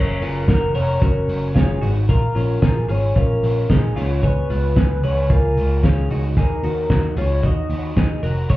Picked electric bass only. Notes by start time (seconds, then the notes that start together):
Already playing: F#1
0.21 F#1
0.48 F#1
0.75 F1
1.02 F#1
1.28 F#1
1.56 F#1
1.82 G#1
2.09 A#1
2.36 A#1
2.62 A#1
2.89 G#1
3.16 A#1
3.43 A#1
3.70 A#1
3.96 C#2
4.50 C#2
4.77 C#2
5.04 C#2
5.30 C#2
5.57 C#2
5.83 C#2
6.10 C#2
6.37 D#2
6.63 D#2
6.90 D#2
7.17 C#2
7.43 D#2
7.70 D#2
7.96 D#2
8.23 F1
8.50 F#1